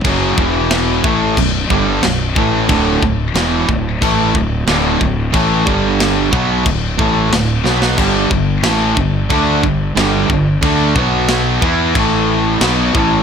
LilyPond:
<<
  \new Staff \with { instrumentName = "Distorted electric guitar" } { \clef bass \time 4/4 \key d \major \tempo 4 = 91 <fis, cis fis>8 <e, b, e>4 <a, e a>8 <b,, fis,>8 <g, d g>8 <b,, fis,>8 <a, e a>8 | <d, a, d>8 <d, a,>8 <e, b, e>8 <d, a,>8 <a, e a>8 <d, a,>8 <d, a, d>8 <d, a,>8 | <a, e a>8 <g, d g>4 <b, fis b>8 <d, a,>8 <a, e a>8 <d, a,>8 <b, fis b>8 | <g, d g>8 <g, d>8 <a, e a>8 <g, d>8 <d a d'>8 <g, d>8 <g, d g>8 <g, d>8 |
<d a d'>8 <b, fis b>4 <e b e'>8 <a, e a>4 <b, fis b>8 <a, e a>8 | }
  \new Staff \with { instrumentName = "Distorted electric guitar" } { \clef bass \time 4/4 \key d \major <fis, cis fis>8 <e, b, e>4 <a, e a>8 <b,, fis,>8 <g, d g>8 <b,, fis,>8 <a, e a>8 | <d, a, d>8 <d, a,>8 <e, b, e>8 <d, a,>8 <a, e a>8 <d, a,>8 <d, a, d>8 <d, a,>8 | <a, e a>8 <g, d g>4 <b, fis b>8 <d, a,>8 <a, e a>8 <d, a,>8 <b, fis b>8 | <g, d g>8 <g, d>8 <a, e a>8 <g, d>8 <d a d'>8 <g, d>8 <g, d g>8 <g, d>8 |
<d a d'>8 <b, fis b>4 <e b e'>8 <a, e a>4 <b, fis b>8 <a, e a>8 | }
  \new Staff \with { instrumentName = "Distorted electric guitar" } { \clef bass \time 4/4 \key d \major <fis, cis fis>8 <e, b, e>4 <a, e a>8 <b,, fis,>8 <g, d g>8 <b,, fis,>8 <a, e a>8 | <d, a, d>8 <d, a,>8 <e, b, e>8 <d, a,>8 <a, e a>8 <d, a,>8 <d, a, d>8 <d, a,>8 | <a, e a>8 <g, d g>4 <b, fis b>8 <d, a,>8 <a, e a>8 <d, a,>8 <b, fis b>8 | <g, d g>8 <g, d>8 <a, e a>8 <g, d>8 <d a d'>8 <g, d>8 <g, d g>8 <g, d>8 |
<d a d'>8 <b, fis b>4 <e b e'>8 <a, e a>4 <b, fis b>8 <a, e a>8 | }
  \new Staff \with { instrumentName = "Fingered electric bass" } { \clef bass \time 4/4 \key d \major fis,,8 e,,4 a,,8 b,,,8 g,,8 b,,,8 a,,8 | d,,8 d,,8 e,,8 d,,8 a,,8 d,,8 d,,8 d,,8 | a,,8 g,,4 b,,8 d,,8 a,,8 d,,8 b,,8 | g,,8 g,,8 a,,8 g,,8 d,8 g,,8 g,,8 g,,8 |
d,8 b,,4 e,8 a,,4 b,,8 a,,8 | }
  \new DrumStaff \with { instrumentName = "Drums" } \drummode { \time 4/4 <cymc bd>8 bd8 <cymc sn>8 bd8 <cymc bd>8 bd8 <cymc sn>8 bd8 | <cymc bd>8 bd8 <cymc sn>8 bd8 <cymc bd>8 bd8 <cymc sn>8 bd8 | <cymc bd>8 bd8 <cymc sn>8 bd8 <cymc bd>8 bd8 <cymc sn>8 sn16 sn16 | <cymc bd>8 bd8 <cymc sn>8 bd8 <cymc bd>8 bd8 <cymc sn>8 bd8 |
<cymc bd>8 bd8 <cymc sn>8 bd8 <cymc bd>4 <cymc sn>8 bd8 | }
>>